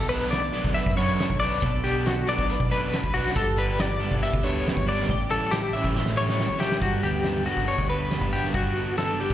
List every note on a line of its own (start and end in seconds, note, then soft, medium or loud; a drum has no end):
0.00 0.49 B1 medium
0.00 0.97 B2 medium
0.00 0.75 A4 medium
0.09 0.39 B2 medium
0.09 0.39 F#3 medium
0.09 0.39 B3 medium
0.09 0.39 D4 medium
0.09 0.31 B4 medium
0.09 closed hi-hat medium
0.31 1.19 D4 medium
0.31 0.74 D5 medium
0.31 snare loud
0.31 closed hi-hat medium
0.52 0.82 B2 medium
0.52 1.59 F#3 medium
0.52 0.82 F#3 medium
0.52 0.97 A3 medium
0.52 0.82 B3 medium
0.52 0.82 D4 medium
0.52 closed hi-hat medium
0.64 0.73 D2 medium
0.64 kick medium
0.64 snare soft
0.74 1.42 B4 medium
0.74 0.97 E5 medium
0.74 closed hi-hat medium
0.86 0.95 F#2 medium
0.86 kick medium
0.86 snare soft
0.97 1.62 F#2 medium
0.97 1.23 F#2 medium
0.97 1.26 B2 medium
0.97 1.25 F#3 medium
0.97 2.27 A3 medium
0.97 1.25 B3 medium
0.97 1.25 D4 medium
0.97 1.39 C#5 medium
0.97 closed hi-hat medium
1.19 2.05 D4 medium
1.19 snare loud
1.19 closed hi-hat medium
1.30 1.56 B1 medium
1.30 kick medium
1.40 1.69 B2 medium
1.40 1.69 F#3 medium
1.40 1.69 B3 medium
1.40 1.69 D4 medium
1.40 1.63 B4 medium
1.40 1.83 D5 medium
1.40 snare soft
1.40 open hi-hat medium
1.62 2.22 B1 medium
1.62 2.71 B2 medium
1.62 2.48 A4 medium
1.62 kick loud
1.62 closed hi-hat loud
1.84 2.13 B2 medium
1.84 2.13 F#3 medium
1.84 2.13 B3 medium
1.84 2.12 D4 loud
1.84 2.07 G4 medium
1.84 closed hi-hat medium
2.06 2.91 D4 medium
2.06 2.28 F#4 medium
2.06 snare loud
2.06 closed hi-hat medium
2.27 2.56 B2 medium
2.27 3.33 F#3 medium
2.27 2.56 F#3 medium
2.27 2.70 A3 medium
2.27 2.56 B3 medium
2.27 2.55 D4 medium
2.27 2.71 D5 medium
2.27 closed hi-hat medium
2.39 2.55 B1 loud
2.39 kick medium
2.49 3.13 B4 medium
2.49 closed hi-hat loud
2.60 2.94 B2 medium
2.60 kick medium
2.70 3.35 F#2 medium
2.70 3.00 B2 medium
2.70 2.99 F#3 medium
2.70 3.36 A3 medium
2.70 2.99 B3 medium
2.70 2.99 D4 loud
2.70 3.14 B4 medium
2.70 closed hi-hat medium
2.92 3.33 D4 medium
2.92 snare loud
2.92 closed hi-hat medium
3.03 3.29 B1 medium
3.03 kick medium
3.14 3.37 B2 medium
3.14 3.37 F#3 medium
3.14 3.36 B3 medium
3.14 3.36 D4 medium
3.14 3.36 F#4 medium
3.14 3.33 B4 medium
3.14 open hi-hat medium
3.27 snare soft
3.35 3.96 G1 medium
3.35 4.65 G2 medium
3.35 4.25 G4 medium
3.35 3.57 A4 medium
3.35 kick loud
3.35 closed hi-hat loud
3.57 3.86 D3 medium
3.57 3.86 G3 medium
3.57 3.86 B3 medium
3.57 3.85 D4 loud
3.57 3.80 B4 medium
3.57 closed hi-hat medium
3.79 5.06 E4 medium
3.79 4.23 D5 medium
3.79 snare loud
3.79 closed hi-hat loud
4.00 4.29 D3 medium
4.00 4.29 G3 medium
4.00 5.13 G3 medium
4.00 4.28 B3 medium
4.00 4.44 B3 medium
4.00 4.28 D4 medium
4.00 closed hi-hat medium
4.11 4.20 B1 medium
4.11 kick medium
4.23 5.10 G4 medium
4.23 4.44 E5 medium
4.23 closed hi-hat medium
4.33 4.42 D2 medium
4.33 kick medium
4.43 4.69 D2 medium
4.43 5.06 D3 medium
4.43 4.72 D3 medium
4.43 4.72 G3 medium
4.43 4.72 B3 loud
4.43 5.07 B3 medium
4.43 4.72 D4 loud
4.43 4.87 C#5 medium
4.43 closed hi-hat medium
4.66 4.88 F#2 medium
4.66 snare loud
4.66 closed hi-hat medium
4.77 5.02 G1 medium
4.77 kick medium
4.87 5.09 G2 medium
4.87 5.09 D3 medium
4.87 5.09 G3 medium
4.87 5.09 B3 medium
4.87 5.09 D4 medium
4.87 5.31 D5 medium
4.87 open hi-hat medium
5.00 snare soft
5.09 5.69 A1 loud
5.09 6.16 A2 medium
5.09 5.95 G4 medium
5.09 kick loud
5.09 closed hi-hat medium
5.30 5.59 E3 medium
5.30 5.59 G3 medium
5.30 5.58 C#4 medium
5.30 5.58 E4 loud
5.30 5.52 A4 medium
5.30 closed hi-hat medium
5.51 6.38 E4 medium
5.51 5.73 G4 medium
5.51 snare loud
5.51 closed hi-hat medium
5.73 6.02 E3 medium
5.73 6.83 E3 medium
5.73 6.02 G3 medium
5.73 6.02 C#4 medium
5.73 6.02 E4 medium
5.73 6.17 E5 medium
5.73 closed hi-hat medium
5.77 6.18 C#4 medium
5.84 6.01 A1 loud
5.84 kick medium
5.95 6.60 G4 medium
5.95 snare medium
6.05 6.40 A2 medium
6.05 snare medium
6.17 6.80 A2 medium
6.17 6.45 E3 medium
6.17 6.45 G3 medium
6.17 6.45 C#4 medium
6.17 6.80 C#4 medium
6.17 6.45 E4 medium
6.17 6.60 C#5 medium
6.29 snare medium
6.39 6.79 E4 medium
6.39 snare medium
6.49 6.75 A1 medium
6.59 6.80 E3 medium
6.59 6.80 G3 medium
6.59 6.81 C#4 medium
6.59 6.81 E4 medium
6.59 6.82 G4 medium
6.59 6.80 G4 medium
6.59 snare medium
6.72 snare medium
6.80 6.99 G1 medium
6.80 7.48 G2 medium
6.80 8.53 G2 medium
6.80 7.23 D3 medium
6.80 7.05 G3 medium
6.80 7.04 B3 loud
6.80 7.02 D4 medium
6.80 7.03 F#4 medium
6.80 kick loud
6.80 closed hi-hat medium
7.03 7.46 D2 medium
7.03 7.24 G3 medium
7.03 7.24 B3 medium
7.03 7.91 B3 medium
7.03 7.25 D4 medium
7.03 7.46 G4 medium
7.03 closed hi-hat medium
7.24 7.46 D3 medium
7.24 7.47 G3 medium
7.24 7.46 B3 medium
7.24 7.46 D4 medium
7.24 7.69 D4 medium
7.24 snare loud
7.24 closed hi-hat medium
7.46 7.91 G2 medium
7.46 7.66 D3 medium
7.46 7.67 G3 medium
7.46 9.20 G3 medium
7.46 7.67 B3 medium
7.46 7.67 D4 medium
7.46 7.68 F#4 medium
7.46 closed hi-hat soft
7.51 8.35 A4 soft
7.57 7.74 G1 medium
7.57 kick medium
7.57 snare soft
7.67 8.11 D3 medium
7.67 7.90 G3 medium
7.67 7.88 B3 medium
7.67 7.87 D4 medium
7.67 8.10 D4 medium
7.67 7.89 C#5 medium
7.67 closed hi-hat medium
7.78 8.21 D2 medium
7.78 kick medium
7.88 8.12 G3 medium
7.88 8.11 B3 medium
7.88 8.53 B3 medium
7.88 8.11 D4 medium
7.88 8.33 B4 medium
7.88 closed hi-hat medium
8.10 8.54 G2 medium
8.10 8.52 D3 medium
8.10 8.55 D3 medium
8.10 8.34 G3 medium
8.10 8.32 B3 medium
8.10 8.52 D4 soft
8.10 8.31 D4 medium
8.10 snare medium
8.10 closed hi-hat medium
8.21 8.47 G2 medium
8.21 kick medium
8.32 8.56 G3 medium
8.32 8.55 B3 medium
8.32 8.56 D4 medium
8.32 9.21 F#4 medium
8.32 8.54 G4 medium
8.32 open hi-hat medium
8.44 snare soft
8.54 8.71 G1 medium
8.54 9.34 G2 medium
8.54 8.99 G2 medium
8.54 8.97 D3 medium
8.54 8.78 G3 medium
8.54 8.76 B3 medium
8.54 8.75 D4 loud
8.54 8.98 F#4 medium
8.54 kick loud
8.54 closed hi-hat medium
8.76 8.99 G3 medium
8.76 8.98 B3 medium
8.76 9.34 B3 soft
8.76 8.99 D4 medium
8.76 closed hi-hat medium
8.97 9.20 D3 medium
8.97 9.21 G3 medium
8.97 9.19 B3 medium
8.97 9.19 D4 medium
8.97 9.34 D4 medium
8.97 9.20 A4 medium
8.97 snare medium
8.97 closed hi-hat medium
9.20 9.34 G2 medium
9.20 9.34 D3 medium
9.20 9.34 G3 medium
9.20 9.34 B3 medium
9.20 9.34 D4 medium
9.20 9.34 G4 medium
9.20 9.34 A4 medium
9.20 closed hi-hat medium
9.30 9.34 G1 medium
9.30 kick medium